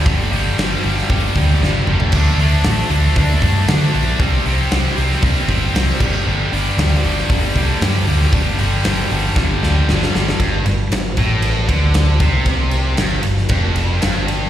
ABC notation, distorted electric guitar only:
X:1
M:4/4
L:1/8
Q:1/4=116
K:Dphr
V:1 name="Distorted electric guitar" clef=bass
[G,,D,G,] [G,,D,G,] [G,,D,G,] [G,,D,G,] [G,,D,G,] [G,,D,G,] [G,,D,G,] [G,,D,G,] | [D,A,D] [D,A,D] [D,A,D] [D,A,D] [D,A,D] [D,A,D] [D,A,D] [D,A,D] | [C,G,C] [C,G,C] [C,G,C] [C,G,C] [C,G,C] [C,G,C] [C,G,C] [G,,D,G,] | [G,,D,G,] [G,,D,G,] [G,,D,G,] [G,,D,G,] [G,,D,G,] [G,,D,G,] [G,,D,G,] [G,,D,G,] |
[G,,D,G,] [G,,D,G,] [G,,D,G,] [G,,D,G,] [G,,D,G,] [G,,D,G,] [G,,D,G,] [G,,D,G,] | [K:Cdor] G,, G,, G,, A,,2 D,2 C,- | C,2 G,, G,, F,,2 G,,2 |]